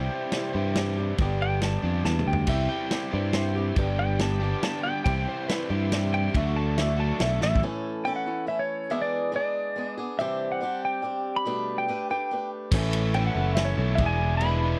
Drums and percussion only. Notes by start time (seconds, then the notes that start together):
0.32 snare, ride
0.75 snare, ride
1.18 kick, ride
1.62 snare, ride
2.04 snare
2.19 mid tom
2.33 floor tom
2.47 kick, ride, crash
2.91 snare, ride
3.33 snare, ride
3.76 kick, ride
4.19 snare, ride
4.63 snare, ride
5.06 kick, ride
5.49 snare, ride
5.92 snare, ride
6.34 kick, ride
6.78 snare, ride
7.20 snare, ride
7.41 snare
7.55 kick
12.72 kick, crash
12.93 ride
13.14 ride
13.57 snare, ride
13.98 kick, ride
14.41 ride